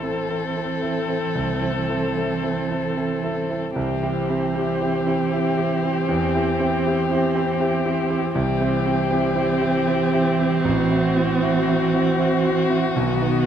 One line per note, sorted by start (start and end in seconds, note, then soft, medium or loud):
0.00 1.37 A1 soft
0.00 3.72 E3 soft
0.00 0.02 C4 soft
0.00 3.72 C4 soft
0.00 0.26 C4 soft
0.00 0.03 E4 soft
0.00 0.26 E4 soft
0.00 0.03 A4 soft
0.00 3.73 A4 medium
0.00 0.27 A4 soft
0.30 0.53 C4 soft
0.30 0.53 E4 soft
0.30 0.54 A4 soft
0.56 0.80 C4 soft
0.56 0.80 E4 soft
0.56 0.80 A4 soft
0.82 1.06 C4 soft
0.82 1.06 E4 soft
0.82 1.06 A4 soft
1.08 1.32 C4 soft
1.08 1.32 E4 soft
1.08 1.33 A4 soft
1.35 1.61 C2 soft
1.62 1.86 C4 soft
1.62 1.86 E4 soft
1.62 1.86 A4 soft
1.89 2.13 C4 soft
1.89 2.14 E4 soft
1.89 2.14 A4 soft
2.16 2.41 C4 soft
2.16 2.41 E4 soft
2.16 2.41 A4 soft
2.43 2.67 C4 soft
2.43 2.68 E4 soft
2.43 2.68 A4 soft
2.70 2.94 C4 soft
2.70 2.94 E4 soft
2.70 2.95 A4 soft
2.96 3.20 C4 soft
2.96 3.21 E4 soft
2.96 3.21 A4 soft
3.23 3.47 C4 soft
3.23 3.47 E4 soft
3.23 3.47 A4 soft
3.50 3.74 C4 soft
3.50 3.74 E4 soft
3.50 3.74 A4 soft
3.76 4.02 C2 medium
3.76 8.31 E3 medium
3.76 8.31 C4 medium
3.76 8.31 G4 medium
4.03 4.26 C4 soft
4.03 4.27 E4 soft
4.03 4.27 G4 soft
4.29 4.53 C4 soft
4.29 4.53 E4 soft
4.29 4.53 G4 soft
4.55 4.78 C4 soft
4.55 4.79 E4 soft
4.55 4.79 G4 medium
4.80 5.04 C4 soft
4.80 5.04 E4 soft
4.80 5.04 G4 medium
5.06 5.29 C4 soft
5.06 5.29 E4 soft
5.06 5.30 G4 soft
5.32 5.55 C4 soft
5.32 5.55 E4 soft
5.32 5.55 G4 medium
5.57 5.80 C4 soft
5.57 5.80 E4 soft
5.57 5.81 G4 soft
5.83 6.06 C4 soft
5.83 6.06 E4 soft
5.83 6.06 G4 soft
6.08 6.34 E2 medium
6.34 6.57 C4 soft
6.34 6.58 E4 soft
6.34 6.58 G4 soft
6.60 6.83 C4 soft
6.60 6.83 E4 medium
6.60 6.83 G4 medium
6.86 7.08 C4 medium
6.86 7.09 E4 soft
6.86 7.09 G4 medium
7.11 7.33 C4 medium
7.11 7.33 E4 medium
7.11 7.33 G4 medium
7.35 7.57 C4 medium
7.35 7.58 E4 medium
7.35 7.58 G4 medium
7.60 7.83 C4 medium
7.60 7.83 E4 medium
7.60 7.83 G4 medium
7.86 8.08 C4 medium
7.86 8.08 E4 medium
7.86 8.08 G4 medium
8.10 8.33 C4 medium
8.10 8.33 E4 medium
8.10 8.33 G4 medium
8.35 8.60 C2 medium
8.35 12.99 E3 medium
8.35 12.98 C4 medium
8.35 10.62 G4 medium
8.60 8.83 C4 medium
8.60 8.83 E4 soft
8.60 8.83 G4 medium
8.85 9.08 C4 medium
8.85 9.08 E4 soft
8.85 9.08 G4 medium
9.10 9.33 C4 medium
9.10 9.34 E4 medium
9.10 9.34 G4 medium
9.36 9.59 C4 medium
9.36 9.59 E4 medium
9.36 9.59 G4 medium
9.61 9.84 C4 medium
9.61 9.84 E4 medium
9.61 9.85 G4 medium
9.86 10.10 C4 medium
9.86 10.10 E4 medium
9.86 10.11 G4 medium
10.13 10.36 C4 medium
10.13 10.37 E4 medium
10.13 10.37 G4 medium
10.39 10.62 C4 medium
10.39 10.62 E4 soft
10.39 10.62 G4 medium
10.65 10.89 A1 medium
10.65 13.46 F#4 medium
10.91 11.14 C4 medium
10.91 11.14 E4 soft
10.91 11.14 F#4 medium
11.16 11.39 C4 medium
11.16 11.39 E4 medium
11.16 11.40 F#4 medium
11.42 11.65 C4 medium
11.42 11.65 E4 soft
11.42 11.66 F#4 medium
11.68 11.91 C4 medium
11.68 11.91 E4 medium
11.68 11.91 F#4 medium
11.93 12.16 C4 medium
11.93 12.17 E4 medium
11.93 12.17 F#4 medium
12.19 12.42 C4 soft
12.19 12.42 E4 soft
12.19 12.42 F#4 medium
12.43 12.67 C4 soft
12.43 12.68 E4 medium
12.43 12.68 F#4 medium
12.69 12.93 C4 soft
12.69 12.93 E4 soft
12.69 12.94 F#4 medium
12.96 13.21 B1 medium
12.96 13.46 D#3 medium
12.96 13.46 B3 medium
13.21 13.45 B3 soft
13.21 13.46 D#4 soft
13.21 13.46 F#4 medium